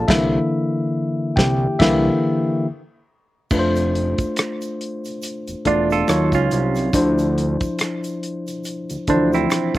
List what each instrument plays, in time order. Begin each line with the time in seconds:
Already playing: tine electric piano A#3 D4 D5 F5
0.08 analog synth bass C2, tine electric piano D3 E3 A#3 E4 E5, kick, snare, crash
1.36 analog synth bass C2, tine electric piano G4 G5, kick, snare
1.79 analog synth bass C2, tine electric piano D3 E3 A#3 E4 E5, kick, snare, crash
3.51 analog synth bass F1, tine electric piano A3 D4 F4 B4, kick, crash, shaker
3.59 tine electric piano C5
3.76 closed hi-hat, shaker
3.95 closed hi-hat
4.18 analog synth bass E1, kick, closed hi-hat, shaker
4.36 finger snap, cross-stick, closed hi-hat, shaker
4.61 closed hi-hat, shaker
4.81 closed hi-hat
5.05 closed hi-hat, shaker
5.22 closed hi-hat, shaker
5.48 analog synth bass E1, closed hi-hat, shaker
5.65 analog synth bass E1, tine electric piano A3 D4 F4 D5, clean electric guitar D4 F4, kick, closed hi-hat
5.90 clean electric guitar F4 A4, closed hi-hat, shaker
6.08 analog synth bass D#2, tine electric piano F#3 D#4 F4 C#5, finger snap, cross-stick, closed hi-hat, shaker
6.32 analog synth bass C#2, clean electric guitar C#4 F4, kick, closed hi-hat, shaker
6.51 analog synth bass C2, closed hi-hat, shaker
6.75 cross-stick, closed hi-hat, shaker
6.93 analog synth bass D2, tine electric piano F3 D4 E4 C5, kick, closed hi-hat, shaker
7.18 closed hi-hat, shaker
7.38 closed hi-hat
7.60 analog synth bass D2, kick, closed hi-hat, shaker
7.79 finger snap, cross-stick, closed hi-hat, shaker
8.04 closed hi-hat, shaker
8.23 closed hi-hat
8.47 closed hi-hat, shaker
8.64 closed hi-hat, shaker
8.90 analog synth bass D2, closed hi-hat, shaker
9.07 analog synth bass D2, tine electric piano E3 D4 E4 C5, clean electric guitar D4, kick, closed hi-hat
9.14 tine electric piano F3
9.33 clean electric guitar C4 E4, closed hi-hat, shaker
9.50 finger snap, cross-stick, closed hi-hat, shaker
9.75 kick